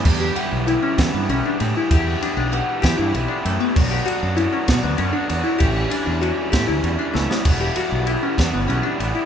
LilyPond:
<<
  \new Staff \with { instrumentName = "Synth pluck" } { \time 6/8 \key e \dorian \tempo 4. = 65 r16 g'16 fis''8 e'16 cis'8 b16 cis'16 d'8 e'16 | g'8 d'16 d'16 fis''8 g'16 e'8 d'16 a16 b16 | r16 g'16 fis'8 e'16 cis'8 b16 cis'16 d'8 e'16 | g'8 d'16 d'16 fis'8 g'16 e'8 d'16 a16 b16 |
r16 g'16 fis'8 e'16 cis'8 b16 cis'16 d'8 e'16 | }
  \new Staff \with { instrumentName = "Overdriven electric guitar" } { \time 6/8 \key e \dorian <e b e' g'>8 <e b e' g'>8 <e b e' g'>8 <e b e' g'>8 <e b e' g'>8 <e b e' g'>8 | <e b e' g'>8 <e b e' g'>8 <e b e' g'>8 <e b e' g'>8 <e b e' g'>8 <e b e' g'>8 | <fis b d' fis'>8 <fis b d' fis'>8 <fis b d' fis'>8 <fis b d' fis'>8 <fis b d' fis'>8 <fis b d' fis'>8 | <e g cis' e'>8 <e g cis' e'>8 <e g cis' e'>8 <e g cis' e'>8 <e g cis' e'>8 <e g cis' e'>8 |
<e g b e'>8 <e g b e'>8 <e g b e'>8 <e g b e'>8 <e g b e'>8 <e g b e'>8 | }
  \new Staff \with { instrumentName = "Clean electric guitar" } { \clef bass \time 6/8 \key e \dorian <d g b>2. | r2. | r2. | r2. |
r2. | }
  \new Staff \with { instrumentName = "Fingered electric bass" } { \clef bass \time 6/8 \key e \dorian e,8 r16 b,,8 r16 e16 g,16 b,,16 r16 a,16 r16 | e,8 r16 b,,8 r16 e16 g,16 b,,16 r16 fis,16 r16 | b,,8 r16 fis,8 r16 b,16 d,16 fis,16 r16 e,16 r16 | a,,8 r16 e,8 r16 a,16 d,16 e,16 r16 cis,16 r16 |
e,,8 r16 b,,8 r16 e,16 g,,16 b,,16 r16 a,,16 r16 | }
  \new DrumStaff \with { instrumentName = "Drums" } \drummode { \time 6/8 <cymc bd>8 cymr8 cymr8 <bd cymr sn>8 cymr8 cymr8 | <bd cymr>8 cymr8 cymr8 <bd cymr sn>8 cymr8 cymr8 | <cymc bd>8 cymr8 cymr8 <bd cymr sn>8 cymr8 cymr8 | <bd cymr>8 cymr8 cymr8 <bd cymr sn>8 cymr8 sn16 sn16 |
<cymc bd cymr>8 cymr8 cymr8 <bd cymr sn>8 cymr8 cymr8 | }
>>